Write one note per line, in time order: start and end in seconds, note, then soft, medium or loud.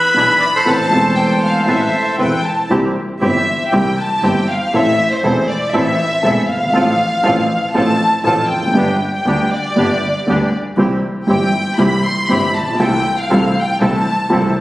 0.00 0.37 B4 medium
0.00 0.44 E5 medium
0.00 0.67 B5 medium
0.14 0.36 B1 medium
0.14 0.36 B1 soft
0.14 0.36 B2 soft
0.14 0.36 E3 soft
0.14 0.36 B3 soft
0.14 0.37 D4 soft
0.14 0.38 E4 soft
0.14 0.36 G#4 medium
0.14 0.38 G#4 medium
0.40 0.47 B4 medium
0.40 0.46 D5 medium
0.55 2.16 A4 medium
0.55 2.16 C5 medium
0.65 0.87 A1 soft
0.65 0.88 A1 medium
0.65 0.87 A2 soft
0.65 0.87 E3 soft
0.65 0.87 B3 soft
0.65 0.87 C4 soft
0.65 0.88 C4 soft
0.65 0.87 A4 soft
0.65 0.88 A4 soft
0.65 0.88 B4 medium
0.65 1.17 A5 medium
0.88 1.63 E1 medium
0.88 1.64 E1 medium
0.88 1.64 E2 medium
0.88 1.62 E3 medium
0.88 1.63 A3 medium
0.88 1.64 C4 medium
0.88 1.64 A4 medium
0.92 1.64 A4 medium
0.92 1.64 C5 medium
1.16 1.42 G5 medium
1.42 1.66 F5 medium
1.66 1.89 A1 soft
1.66 1.89 A1 medium
1.66 1.88 A2 soft
1.66 1.88 E3 soft
1.66 1.88 B3 soft
1.66 1.88 C4 soft
1.66 1.89 C4 medium
1.66 1.89 A4 soft
1.66 1.89 B4 medium
1.66 2.15 E5 medium
2.18 2.40 E1 soft
2.18 2.41 E2 soft
2.18 2.40 E3 soft
2.18 2.40 B3 soft
2.18 2.40 C4 soft
2.18 2.41 A4 soft
2.18 2.41 B4 soft
2.18 2.45 G5 medium
2.45 2.70 A5 medium
2.69 2.91 C2 medium
2.69 2.92 C2 medium
2.69 2.92 C3 medium
2.69 2.91 E3 medium
2.69 2.92 G3 soft
2.69 2.92 C4 medium
2.69 2.91 E4 medium
2.69 2.92 G4 medium
3.20 3.42 G1 medium
3.20 3.43 G1 medium
3.20 3.43 G2 medium
3.20 3.43 E3 medium
3.20 3.43 G3 medium
3.20 3.42 C4 medium
3.20 3.43 C4 medium
3.20 3.42 E4 medium
3.20 3.43 G4 medium
3.20 3.44 G4 medium
3.20 3.69 E5 medium
3.72 3.93 C2 medium
3.72 3.94 C2 medium
3.72 3.94 C3 medium
3.72 3.94 E3 medium
3.72 3.94 G3 medium
3.72 3.93 C4 medium
3.72 3.94 C4 medium
3.72 3.93 E4 medium
3.72 3.93 G4 medium
3.72 3.94 G4 medium
3.72 3.98 G5 medium
3.99 4.23 A5 medium
4.22 4.44 G1 medium
4.22 4.44 G2 medium
4.22 4.44 E3 medium
4.22 4.44 G3 medium
4.22 4.44 C4 medium
4.22 4.44 E4 medium
4.22 4.44 G4 medium
4.22 4.45 G4 medium
4.22 4.49 G5 medium
4.50 4.74 F5 medium
4.73 4.95 A1 medium
4.73 4.95 A2 medium
4.73 4.95 E3 medium
4.73 4.95 A3 medium
4.73 4.95 C4 medium
4.73 4.95 E4 medium
4.73 4.95 A4 medium
4.73 5.11 E5 medium
5.11 5.49 C5 medium
5.24 5.45 E1 medium
5.24 5.45 E2 medium
5.24 5.45 E3 medium
5.24 5.45 A3 medium
5.24 5.45 C4 medium
5.24 5.45 E4 medium
5.24 5.45 A4 medium
5.48 5.74 D5 medium
5.72 5.95 A1 medium
5.72 5.96 A1 medium
5.72 5.95 A2 medium
5.72 5.95 E3 medium
5.72 5.95 A3 medium
5.72 5.95 C4 medium
5.72 5.95 E4 medium
5.72 5.95 A4 medium
5.72 6.49 E5 medium
6.23 6.45 E1 medium
6.23 6.46 E1 medium
6.23 6.45 E2 medium
6.23 6.45 E3 medium
6.23 6.45 A3 medium
6.23 6.45 C4 medium
6.23 6.45 E4 medium
6.23 6.45 A4 medium
6.48 6.74 G1 soft
6.48 7.74 F5 medium
6.56 6.62 F#1 soft
6.63 6.69 G1 medium
6.69 6.75 G#1 medium
6.69 6.95 F3 medium
6.73 6.95 A1 medium
6.73 6.96 A1 medium
6.73 6.95 A2 medium
6.73 6.95 A3 medium
6.73 6.95 C4 medium
6.73 6.96 C4 medium
6.73 6.96 F4 medium
6.73 6.95 A4 medium
6.73 6.96 A4 medium
7.23 7.45 A1 medium
7.23 7.45 A2 medium
7.23 7.45 F3 medium
7.23 7.45 A3 medium
7.23 7.45 C4 medium
7.23 7.46 F4 medium
7.23 7.45 A4 medium
7.23 7.46 A4 medium
7.74 7.96 A1 medium
7.74 7.96 A2 medium
7.74 7.96 F3 medium
7.74 7.96 A3 medium
7.74 7.96 C4 medium
7.74 7.96 F4 medium
7.74 7.96 A4 medium
7.74 8.21 A5 medium
8.24 8.46 A1 medium
8.24 8.46 A2 medium
8.24 8.46 F3 medium
8.24 8.46 A3 medium
8.24 8.46 C4 medium
8.24 8.47 F4 medium
8.24 8.46 A4 medium
8.24 8.47 A4 medium
8.24 8.48 A5 medium
8.49 8.74 F1 soft
8.49 9.13 G5 medium
8.56 8.63 E2 soft
8.62 8.69 F2 soft
8.67 8.75 F#2 medium
8.73 8.96 G1 medium
8.73 8.96 G2 medium
8.73 8.95 D3 medium
8.73 8.96 G3 medium
8.73 8.96 B3 medium
8.73 8.97 B3 medium
8.73 8.97 D4 medium
8.73 8.96 G4 medium
8.73 8.97 G4 medium
9.14 9.49 G5 medium
9.25 9.47 D2 medium
9.25 9.47 D3 medium
9.25 9.47 G3 medium
9.25 9.47 B3 medium
9.25 9.48 B3 medium
9.25 9.48 D4 soft
9.25 9.47 G4 medium
9.25 9.48 G4 medium
9.52 10.53 D5 medium
9.76 9.98 G1 medium
9.76 9.98 G2 medium
9.76 9.97 D3 medium
9.76 9.98 G3 medium
9.76 9.98 B3 medium
9.76 9.98 D4 medium
9.76 9.98 G4 medium
10.26 10.49 D2 medium
10.26 10.49 D3 medium
10.26 10.48 G3 medium
10.26 10.49 B3 medium
10.26 10.49 D4 medium
10.26 10.49 G4 medium
10.26 10.50 G4 medium
10.77 10.99 C2 medium
10.77 10.99 C3 medium
10.77 10.99 E3 medium
10.77 10.99 G3 medium
10.77 10.99 C4 soft
10.77 11.00 C4 medium
10.77 11.00 E4 medium
10.77 10.99 G4 medium
10.77 11.00 G4 medium
11.27 11.49 G1 medium
11.27 11.49 G2 medium
11.27 11.49 E3 medium
11.27 11.49 G3 medium
11.27 11.49 C4 medium
11.27 11.50 C4 medium
11.27 11.50 E4 medium
11.27 11.50 G4 medium
11.27 11.75 G5 medium
11.78 12.00 C2 medium
11.78 12.00 C3 medium
11.78 12.00 E3 medium
11.78 12.00 G3 medium
11.78 12.00 C4 medium
11.78 12.01 C4 medium
11.78 12.01 E4 medium
11.78 12.00 G4 medium
11.78 12.01 G4 medium
11.78 12.04 B5 medium
12.04 12.30 C6 medium
12.29 12.51 G1 medium
12.29 12.51 G2 medium
12.29 12.51 E3 medium
12.29 12.51 G3 medium
12.29 12.51 C4 medium
12.29 12.51 E4 medium
12.29 12.51 G4 medium
12.29 12.55 B5 medium
12.55 12.80 A#1 medium
12.55 12.80 A5 medium
12.60 12.67 A1 soft
12.66 12.73 A#1 medium
12.73 12.80 B1 medium
12.79 13.01 C2 medium
12.79 13.01 C3 medium
12.79 13.01 E3 medium
12.79 13.01 A3 medium
12.79 13.01 C4 medium
12.79 13.01 E4 medium
12.79 13.01 A4 medium
12.79 13.18 G5 medium
13.21 13.57 F5 medium
13.29 13.52 C2 medium
13.29 13.52 C3 medium
13.29 13.51 E3 medium
13.29 13.52 A3 medium
13.29 13.51 C4 medium
13.29 13.52 C4 medium
13.29 13.51 E4 medium
13.29 13.51 A4 medium
13.29 13.52 A4 medium
13.59 13.82 G5 medium
13.80 14.01 C2 medium
13.80 14.02 C2 medium
13.80 14.02 C3 medium
13.80 14.02 E3 medium
13.80 14.02 A3 medium
13.80 14.02 C4 medium
13.80 14.02 E4 medium
13.80 14.02 A4 medium
13.80 14.52 A5 medium
14.30 14.51 C2 medium
14.30 14.52 C2 medium
14.30 14.51 C3 medium
14.30 14.51 E3 medium
14.30 14.51 A3 medium
14.30 14.51 C4 medium
14.30 14.52 C4 medium
14.30 14.52 E4 medium
14.30 14.51 A4 medium
14.30 14.52 A4 medium
14.55 14.61 C2 medium